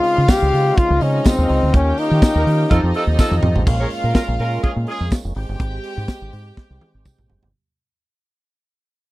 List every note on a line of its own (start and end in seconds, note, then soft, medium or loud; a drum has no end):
0.00 1.71 C#3 medium
0.00 1.70 G#3 medium
0.00 1.70 C4 medium
0.00 1.71 D#4 medium
0.00 0.31 F4 loud
0.00 0.98 F4 medium
0.00 2.67 F4 medium
0.00 0.98 F5 loud
0.00 open hi-hat medium
0.18 0.26 C#3 loud
0.28 0.80 G4 loud
0.28 kick loud
0.28 snare loud
0.28 closed hi-hat medium
0.28 tambourine loud
0.42 0.50 C#2 medium
0.53 0.71 C#3 loud
0.53 open hi-hat medium
0.78 1.04 F4 loud
0.78 kick loud
0.78 closed hi-hat medium
0.90 0.98 C#2 loud
1.01 1.19 C#3 loud
1.01 1.29 C#4 medium
1.01 1.72 D#4 medium
1.01 1.72 D#5 medium
1.01 open hi-hat medium
1.24 1.75 C4 loud
1.24 kick loud
1.24 snare loud
1.24 closed hi-hat medium
1.24 tambourine loud
1.38 1.47 D#2 medium
1.49 1.59 C#2 loud
1.49 open hi-hat medium
1.63 1.71 D2 loud
1.73 1.91 D#2 loud
1.73 2.69 D#3 medium
1.73 2.70 A#3 medium
1.73 2.69 C#4 medium
1.73 2.01 C#4 loud
1.73 2.68 G4 medium
1.73 2.69 G4 medium
1.73 2.68 G5 medium
1.73 kick loud
1.73 closed hi-hat medium
1.98 2.95 D#4 loud
1.98 open hi-hat medium
2.11 2.19 D#3 loud
2.22 kick loud
2.22 snare loud
2.22 closed hi-hat medium
2.22 tambourine medium
2.35 2.43 D#2 loud
2.35 2.42 D#4 medium
2.35 2.42 G4 medium
2.35 2.42 A#4 medium
2.46 2.64 D#3 loud
2.46 open hi-hat medium
2.70 2.80 F2 loud
2.70 3.66 F3 medium
2.70 3.66 C4 medium
2.70 3.65 D#4 medium
2.70 2.78 D#4 medium
2.70 3.66 D#4 medium
2.70 2.78 F4 loud
2.70 3.66 G4 medium
2.70 2.78 A4 loud
2.70 3.66 A4 medium
2.70 3.65 D#5 medium
2.70 kick loud
2.70 closed hi-hat medium
2.83 2.91 F2 medium
2.94 3.03 D#4 medium
2.94 3.03 F4 medium
2.94 3.03 A4 loud
2.94 open hi-hat medium
3.07 3.15 D#2 medium
3.19 3.34 D#4 medium
3.19 3.34 F4 medium
3.19 3.34 A4 loud
3.19 kick loud
3.19 snare medium
3.19 tambourine loud
3.31 3.40 F2 medium
3.31 high tom medium
3.43 3.52 F2 loud
3.43 mid tom loud
3.56 3.64 A1 loud
3.56 floor tom medium
3.66 3.85 A#1 loud
3.66 5.34 G#3 medium
3.66 5.34 A#3 medium
3.66 5.34 C#4 medium
3.66 5.09 F4 medium
3.66 5.09 F5 loud
3.66 kick loud
3.66 crash loud
3.80 3.87 G#4 medium
3.80 3.87 A#4 medium
3.80 3.87 C#5 medium
3.90 open hi-hat medium
4.04 4.12 A#2 loud
4.04 4.13 C#4 medium
4.04 4.13 F4 medium
4.04 4.13 A#4 medium
4.15 4.23 C#4 medium
4.15 4.23 F4 loud
4.15 4.23 A#4 loud
4.15 kick loud
4.15 snare loud
4.15 closed hi-hat soft
4.15 tambourine medium
4.28 4.36 A#1 medium
4.39 4.57 A#2 loud
4.39 4.59 C#4 loud
4.39 4.59 F4 loud
4.39 4.59 A#4 loud
4.39 open hi-hat medium
4.63 4.71 C#4 medium
4.63 4.71 F4 medium
4.63 4.71 G#4 medium
4.63 muted fingered electric bass stroke medium
4.63 kick loud
4.63 closed hi-hat medium
4.76 4.85 A#2 loud
4.87 5.07 C#4 medium
4.87 5.07 F4 medium
4.87 5.07 G#4 loud
4.87 open hi-hat medium
5.00 5.09 F2 medium
5.10 kick loud
5.10 snare loud
5.10 closed hi-hat medium
5.10 tambourine loud
5.25 5.33 F1 medium
5.35 5.45 G#1 loud
5.35 7.51 G#3 medium
5.35 7.51 C4 medium
5.35 7.26 G4 loud
5.35 7.51 G4 medium
5.35 7.26 G5 loud
5.35 open hi-hat medium
5.49 5.57 G1 medium
5.60 5.78 G#1 loud
5.60 kick loud
5.60 closed hi-hat medium
5.83 open hi-hat medium
5.97 6.06 G#2 loud
6.08 kick loud
6.08 snare loud
6.08 closed hi-hat medium
6.08 tambourine loud
6.22 6.30 G#1 medium
6.33 6.50 G#2 loud
6.33 open hi-hat medium
6.57 kick loud
6.57 snare medium
6.70 6.78 C2 medium
6.81 high tom medium
6.95 7.03 G#1 medium
7.05 kick loud
7.05 mid tom medium
7.05 tambourine loud
7.18 7.27 A#1 medium
7.18 mid tom medium
7.30 7.39 F#1 medium
7.30 floor tom loud
7.43 7.51 G1 medium
7.43 floor tom loud